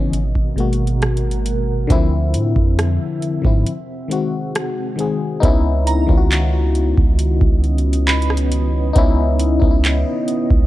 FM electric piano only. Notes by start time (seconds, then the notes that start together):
Already playing: C#3 E3 B3 C#4 D#4
0.56 B2 G#3 A#3
0.60 F#4
1.87 D3 F3 C4
1.92 E4
3.42 D3 F3 C4
3.47 E4
4.08 D#3 G#3 C4
4.12 F#4
4.96 D#3 G#3 C4
5.00 G#4
5.40 B3 C#4 D#4
5.45 E4
6.07 D#3 B3 C#4
6.11 F4
6.17 F#4
8.93 B3 C#4 D#4
8.98 E4
9.60 B3 C#4 D#4
9.64 D#4
9.71 E4